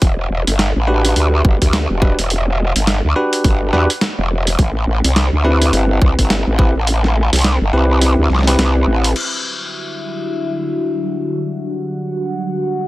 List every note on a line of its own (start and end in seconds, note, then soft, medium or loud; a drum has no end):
0.02 0.29 E1 loud
0.02 kick loud
0.02 closed hi-hat soft
0.30 0.45 E1 medium
0.47 0.73 G1 loud
0.47 closed hi-hat medium
0.59 snare loud
0.59 closed hi-hat medium
0.76 1.14 A1 loud
0.87 1.99 D4 medium
0.87 1.99 F#4 medium
0.87 1.99 G4 medium
0.87 1.99 B4 medium
1.05 closed hi-hat medium
1.16 1.43 D2 loud
1.16 closed hi-hat soft
1.45 1.59 G1 medium
1.45 kick loud
1.62 1.88 D2 loud
1.62 kick medium
1.62 closed hi-hat medium
1.73 snare loud
1.73 closed hi-hat soft
1.90 2.16 E1 loud
2.02 2.17 D4 medium
2.02 2.17 F#4 medium
2.02 2.17 G4 medium
2.02 2.17 B4 medium
2.02 kick loud
2.19 2.73 E1 loud
2.19 closed hi-hat medium
2.30 closed hi-hat medium
2.76 3.02 G1 loud
2.76 closed hi-hat medium
2.87 snare loud
2.87 closed hi-hat medium
3.05 3.14 D2 loud
3.16 3.70 D4 medium
3.16 3.70 F#4 medium
3.16 3.70 G4 medium
3.16 3.70 B4 loud
3.33 closed hi-hat medium
3.44 3.71 G1 loud
3.44 kick loud
3.44 closed hi-hat soft
3.73 3.87 E2 medium
3.73 3.88 D4 medium
3.73 3.88 F#4 medium
3.73 3.88 G4 medium
3.73 3.88 B4 loud
3.73 snare soft
3.90 closed hi-hat medium
4.01 snare loud
4.01 closed hi-hat soft
4.19 4.57 E1 medium
4.47 closed hi-hat medium
4.59 4.86 A1 loud
4.59 kick loud
4.59 closed hi-hat soft
4.87 5.02 A1 loud
5.04 5.30 C2 loud
5.04 closed hi-hat medium
5.16 snare loud
5.16 closed hi-hat medium
5.33 5.71 D2 medium
5.44 6.56 C4 medium
5.44 6.56 E4 medium
5.44 6.56 G4 medium
5.44 6.56 B4 medium
5.62 closed hi-hat medium
5.73 6.00 G1 medium
5.73 closed hi-hat soft
6.02 6.16 C2 loud
6.02 kick loud
6.19 6.45 G1 medium
6.19 kick medium
6.19 closed hi-hat medium
6.30 snare loud
6.30 closed hi-hat soft
6.47 6.73 A1 medium
6.59 6.74 C4 medium
6.59 6.74 E4 medium
6.59 6.74 G4 medium
6.59 6.74 B4 medium
6.59 kick loud
6.76 7.30 A1 loud
6.87 closed hi-hat medium
7.04 snare soft
7.33 7.59 C2 loud
7.33 snare soft
7.33 closed hi-hat medium
7.36 closed hi-hat medium
7.39 closed hi-hat soft
7.41 snare loud
7.41 closed hi-hat soft
7.44 closed hi-hat medium
7.61 7.71 G1 loud
7.73 8.16 C2 loud
7.73 8.28 C4 medium
7.73 8.28 E4 medium
7.73 8.28 G4 medium
7.73 8.28 B4 loud
8.01 closed hi-hat medium
8.19 8.28 D2 medium
8.30 8.57 C2 loud
8.30 snare soft
8.35 snare soft
8.39 snare soft
8.43 snare soft
8.47 9.15 C4 medium
8.47 9.15 E4 medium
8.47 9.15 G4 medium
8.47 9.15 B4 medium
8.47 snare soft
8.47 closed hi-hat medium
8.59 8.85 C2 loud
8.59 snare loud
8.59 closed hi-hat medium
8.87 9.14 A1 loud
9.04 closed hi-hat medium
9.16 12.88 D4 medium
9.16 12.88 F#4 medium
9.16 12.88 G4 medium
9.16 11.42 E5 medium
9.16 crash medium
11.44 12.88 F#5 medium